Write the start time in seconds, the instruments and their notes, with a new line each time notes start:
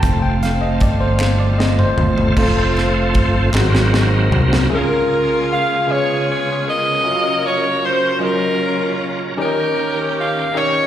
Already playing: tonewheel organ C4, string section C5, tine electric piano A5
0.02 fingered electric bass F1, tine electric piano F3 A3 C4, tonewheel organ A3 F4, string section F4 A4 F5, kick, closed hi-hat
0.22 tine electric piano G5
0.43 tine electric piano F5, snare, closed hi-hat
0.61 tine electric piano D#5
0.80 fingered electric bass G1, tine electric piano D5, kick, closed hi-hat
1.00 tine electric piano C5
1.20 snare, clap
1.40 tine electric piano D5
1.58 tine electric piano D#5, snare
1.79 tine electric piano C5, mid tom
1.97 fingered electric bass G1, tine electric piano F3 A3 C4, floor tom
2.18 floor tom
2.37 fingered electric bass F1, tonewheel organ F3 A3 C4, string section F4 A4 C5 F5, tine electric piano F4 A4 C5, kick, crash
2.77 snare, ride
3.15 fingered electric bass G1, kick, ride
3.53 fingered electric bass G#1, tine electric piano G#2 D#4 F#4 G#4 C5 F#5, tonewheel organ F#3 A#3 C4, string section F#4 G#4 D#5, snare, clap
3.75 snare
3.94 snare
4.31 fingered electric bass C2, floor tom
4.53 snare
4.69 tine electric piano C#3 C#4 F4 G#4 A#4 E5, tonewheel organ C#3 G#3 A#3 C#4 G#4
4.74 saxophone section F4 A#4, tine electric piano F5
5.52 saxophone section F5
5.87 tine electric piano C#3 C#4 F4 G#4 B4 E5, tonewheel organ B3 G#4, saxophone section F4 G#4 C#5
5.94 tine electric piano F5
6.30 saxophone section C#5
6.67 saxophone section A#4 D#5
7.04 tonewheel organ F#3 A#3 C#4 A#4, tine electric piano C#4 F4 F#4 A#4 E5
7.11 tine electric piano F5
7.47 saxophone section C#5
7.85 saxophone section C5
8.19 tine electric piano F#3 C#4 F4 A#4 D#5, saxophone section C#4 F4
8.23 saxophone section A#4
9.37 tonewheel organ D#3 G5, tine electric piano D#3 C#4 D#4 G4 A#4 D5, saxophone section C#4 G4 A#4
9.45 tine electric piano D#5
10.18 saxophone section F5
10.54 tine electric piano C#4 D#4 G4 A#4 D#5, saxophone section C#5